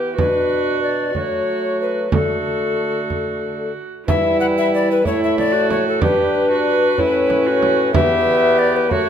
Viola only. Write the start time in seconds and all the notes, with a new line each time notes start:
Already playing: G4
0.18 F#4
1.15 F#4
2.13 F#4
4.07 E4
5.04 E4
5.52 F#4
6.02 G4
6.51 F#4
6.99 E4
7.47 F#4
7.96 G4
8.92 F#4